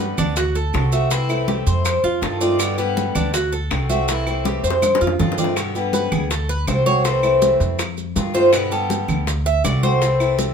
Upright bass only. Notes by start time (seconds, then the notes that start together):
Already playing: G2
0.18 D2
0.74 C2
1.66 F2
2.04 F2
2.22 G2
3.15 D2
3.71 C2
4.63 F2
5.01 F2
5.20 G2
6.12 D2
6.68 C2
7.60 F2
8.16 G2
9.09 D2
9.65 C2